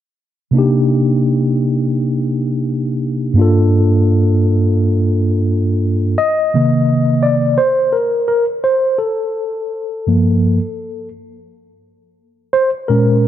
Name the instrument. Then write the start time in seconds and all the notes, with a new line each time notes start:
tine electric piano
0.51 C3 A#3 D4
0.57 D#4 G4
3.34 G2 A#3
3.38 D4 F4 A4
6.18 D#5
6.54 C3 D#3 A#3
7.23 D5
7.58 C5
7.93 A#4
8.28 A#4
8.64 C5
8.98 A4
10.07 G2 F3 A#3
12.53 C5
12.88 A#2 G#3 C#4 A#4